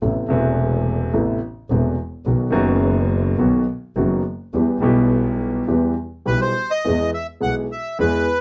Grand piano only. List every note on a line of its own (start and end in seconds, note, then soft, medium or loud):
0.02 0.26 A1 soft
0.02 0.25 A2 soft
0.02 0.25 C3 soft
0.02 0.25 A3 soft
0.02 0.26 B3 soft
0.02 0.26 E4 soft
0.28 1.10 E1 medium
0.28 1.10 E2 medium
0.28 1.09 C3 medium
0.28 1.09 A3 medium
0.28 1.10 B3 medium
0.33 1.11 E4 medium
1.13 1.37 A1 medium
1.13 1.37 A2 medium
1.13 1.37 C3 soft
1.13 1.37 A3 soft
1.13 1.37 B3 soft
1.13 1.37 E4 soft
1.71 1.94 E1 soft
1.71 1.94 E2 medium
1.71 1.94 C3 soft
1.71 1.94 A3 soft
1.71 1.94 B3 soft
1.71 1.94 E4 soft
2.26 2.50 B1 soft
2.26 2.50 B2 soft
2.26 2.49 D#3 soft
2.26 2.50 F#3 soft
2.26 2.50 B3 soft
2.26 2.50 F#4 soft
2.50 3.34 F#1 medium
2.50 3.34 F#2 medium
2.50 3.33 D#3 medium
2.50 3.33 F#3 medium
2.50 3.34 B3 medium
2.50 3.35 F#4 medium
3.38 3.63 B1 medium
3.38 3.63 B2 medium
3.38 3.63 D#3 soft
3.38 3.63 F#3 soft
3.38 3.63 B3 soft
3.38 3.63 F#4 medium
3.96 4.20 F#1 medium
3.96 4.20 F#2 medium
3.96 4.20 D#3 soft
3.96 4.21 F#3 soft
3.96 4.21 B3 soft
3.96 4.21 F#4 soft
4.53 4.78 E2 soft
4.53 4.78 E3 soft
4.53 4.78 G3 soft
4.53 4.78 B3 soft
4.53 4.78 G4 soft
4.80 5.64 B1 medium
4.80 5.64 B2 medium
4.80 5.63 E3 medium
4.80 5.63 G3 medium
4.80 5.64 B3 medium
4.80 5.65 G4 medium
5.68 5.92 E2 soft
5.68 5.93 E3 soft
5.68 5.92 G3 soft
5.68 5.93 B3 soft
5.68 5.93 G4 soft
6.25 6.51 B1 soft
6.25 6.51 B2 soft
6.25 6.51 E3 soft
6.25 6.51 G3 soft
6.25 6.51 B3 soft
6.25 6.51 G4 soft
6.85 7.09 E2 medium
6.85 7.09 E3 medium
6.85 7.09 G#3 soft
6.85 7.09 B3 soft
6.85 7.09 G#4 soft
7.40 7.65 B1 soft
7.40 7.65 B2 soft
7.40 7.65 E3 soft
7.40 7.65 G#3 soft
7.40 7.66 B3 soft
7.40 7.65 G#4 soft
7.99 8.23 E2 medium
7.99 8.23 E3 medium
7.99 8.23 G#3 soft
7.99 8.23 B3 soft
7.99 8.24 G#4 medium